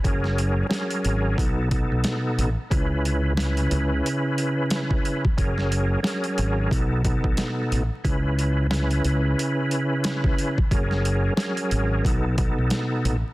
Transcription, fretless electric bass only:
X:1
M:4/4
L:1/16
Q:"Swing 16ths" 1/4=90
K:C#m
V:1 name="Fretless electric bass" clef=bass
F,,,4 z2 G,,,2 B,,,3 B,,, z2 A,,, z | C,,6 C,,2 z8 | F,,,4 z2 G,,,2 B,,,3 B,,, z2 A,,, z | C,,6 C,,2 z8 |
F,,,4 z2 G,,,2 B,,,3 B,,, z2 A,,, z |]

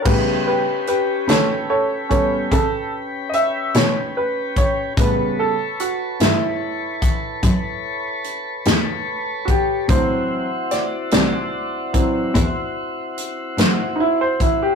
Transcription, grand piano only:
X:1
M:12/8
L:1/16
Q:3/8=49
K:Amix
V:1 name="Grand piano"
[G_B=B]2 [GB]2 [GB]2 [Ac]2 [Ac]2 [Ac]2 A2 z2 [^de]2 c2 B2 c2 | B2 A2 F2 E12 z4 [FG]2 | =c4 d2 d12 z2 [^DE] c E G |]
V:2 name="Grand piano" clef=bass
[C,G,B,]2 z8 [G,B,C]2 z12 | [C,G,B,]2 z16 z6 | [E,F,=C]2 z8 [E,F,C]2 z12 |]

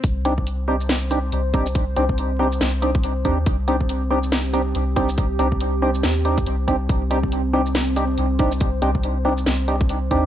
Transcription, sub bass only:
X:1
M:4/4
L:1/8
Q:"Swing 16ths" 1/4=140
K:Cm
V:1 name="Sub bass" clef=bass
C,,6 C,,2- | C,, C,,3 C,,3 E,, | C,,6 C,,2- | C,, C,,3 E,,2 C,,2 |
C,,6 C,,2- | C,, C,,3 C,,3 E,, |]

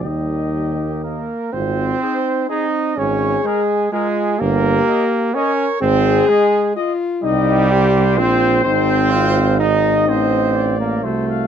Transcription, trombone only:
X:1
M:3/4
L:1/8
Q:1/4=126
K:Eb
V:1 name="Trombone"
G,2 G, B, B,2 | [K:Ab] C4 E2 | D2 A,2 A,2 | B,4 D2 |
C2 A,2 z2 | [K:Ablyd] G,4 C2 | C4 E2 | C3 B, =A,2 |]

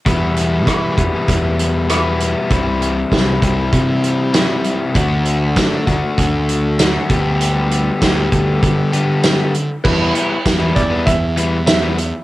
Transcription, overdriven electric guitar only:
X:1
M:4/4
L:1/16
Q:1/4=98
K:Em
V:1 name="Overdriven electric guitar" clef=bass
[E,,B,,E,G,B,E]6 [E,,B,,E,G,B,E]6 [E,,B,,E,G,B,E]4 | [C,E,G,CE]6 [C,E,G,CE]6 [C,E,G,CE]4 | [D,A,DF]6 [D,A,DF]6 [D,A,DF]2 [D,G,B,G]2- | [D,G,B,G]4 [D,G,B,G]6 [D,G,B,G]4 z2 |
[E,G,B,E] [E,G,B,E] [E,G,B,E] z2 [E,G,B,E] z [E,G,B,E] z2 [E,G,B,E] z2 [E,G,B,E] z2 |]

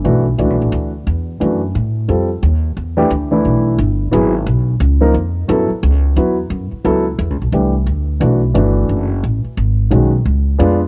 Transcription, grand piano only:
X:1
M:4/4
L:1/8
Q:"Swing" 1/4=176
K:Bm
V:1 name="Grand piano"
[E,A,DF] z [E,A,DF]3 z3 | [E,A,DF] z3 [G,=C=FA] z3 | z [E,A,DG] z [E,A,DE]3 z2 | [F,B,E^G] z4 [^E,^A,^D^A] z2 |
[F,B,EA] z3 [F,B,EF] z3 | [F,B,EA] z3 [E,A,DG] z3 | [E,A,DF] z [E,A,DF]3 z3 | z2 [^D,^G,CF] z3 [G,B,=D^E] z |]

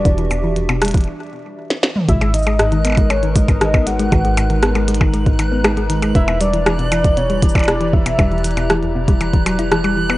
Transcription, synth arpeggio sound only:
X:1
M:4/4
L:1/16
Q:1/4=118
K:G#m
V:1 name="Synth arpeggio sound" clef=bass
E, E, B,, E, E,, B,, =G, E, z8 | G, G, D, G, G,, D, B, G, G, D, G, G,, D, B, G, G, | D, G, G,, D, B, G, G, D, G, G,, D, B, G, G, D, G, | E,, B,, =G, E, E, B,, E, E,, B,, G, E, E, B,, E, E,, B,, |
=G, E, E, B,, E, E,, B,, G, E, E, F, E E, G, E, B, |]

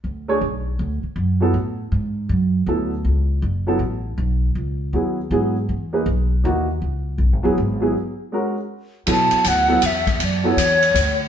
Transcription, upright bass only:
X:1
M:3/4
L:1/8
Q:"Swing" 1/4=160
K:Bdor
V:1 name="Upright bass" clef=bass
D,,2 B,,,2 D,, z | F,,2 A,,2 G,,2 | F,,2 D,,2 C,,2 | F,,,2 A,,,2 B,,,2 |
C,,2 ^D,,2 G,,2 | E,,2 B,,,2 ^D,,2 | C,,2 (3B,,, G,,, E,,, G,,,2 | z6 |
B,, z D,,2 E,,2 | F,,2 E,,2 D,,2 |]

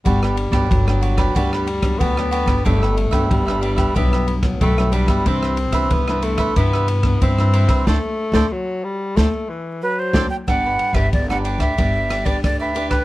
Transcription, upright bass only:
X:1
M:4/4
L:1/16
Q:1/4=92
K:G
V:1 name="Upright bass" clef=bass
G,,,3 G,,, G,,,4 D,,4 D,,3 G,,, | G,,,3 G,,, G,,,4 B,,,4 B,,,3 G,,, | C,,3 C,, C,,4 G,,4 G,,3 C,, | D,, z2 D,, z4 D,, z4 z D,, z |
G,,,2 z G,,, G,,,3 D,, G,,,4 D,,4 |]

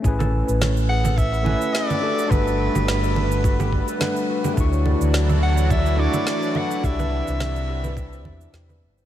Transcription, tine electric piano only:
X:1
M:4/4
L:1/8
Q:"Swing 16ths" 1/4=106
K:Amix
V:1 name="Tine electric piano"
[A,CEB^g]4- [A,CEBg] [A,CEBg]2 [A,DF=GA] | [G,A,DBf]6 [G,A,DBf]2 | [A,DEFc']4- [A,DEFc'] [A,DEFc']2 [A,DEFB] | [DE]6 z2 |]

